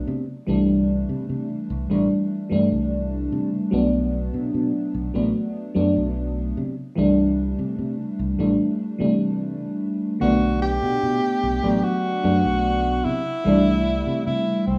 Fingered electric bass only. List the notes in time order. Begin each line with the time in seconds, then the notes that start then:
0.08 C3
0.48 C2
1.09 C3
1.29 C3
1.70 C2
1.91 A1
2.51 G2
2.72 C2
3.32 C3
3.73 B1
4.34 B2
4.54 B2
4.94 B1
5.15 A1
5.76 F#2
5.96 B1
6.57 C3
6.98 C2
7.59 C3
7.79 C3
8.19 C2
8.39 A1
9.00 C3
10.22 B1
10.83 B2
11.03 B2
11.43 B1
11.64 A1
12.24 F#2
12.45 B1
13.05 C3
13.45 C2
14.07 C3
14.27 C3
14.67 C2